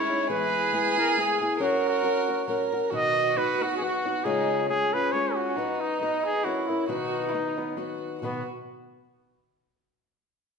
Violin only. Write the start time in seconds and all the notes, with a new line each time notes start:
Already playing: E4
0.27 G#4
1.59 A#4
2.48 A#4
2.90 F#4
4.25 D#4
4.67 C#4
5.56 D#4
6.43 E4
6.89 F#4
7.29 E4
7.34 D#4
7.58 B3
7.77 F#4
8.22 F#4